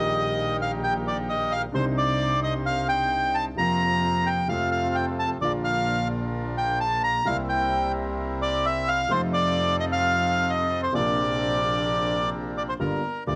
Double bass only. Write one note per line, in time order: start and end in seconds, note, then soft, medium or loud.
0.00 1.65 A#1 medium
1.75 3.48 C2 medium
3.58 4.45 F2 medium
4.49 5.37 F2 medium
5.42 7.18 A#1 medium
7.27 9.02 C2 medium
9.11 10.85 F2 medium
10.94 12.71 A#1 medium
12.81 13.00 G1 medium
13.27 13.35 D2 medium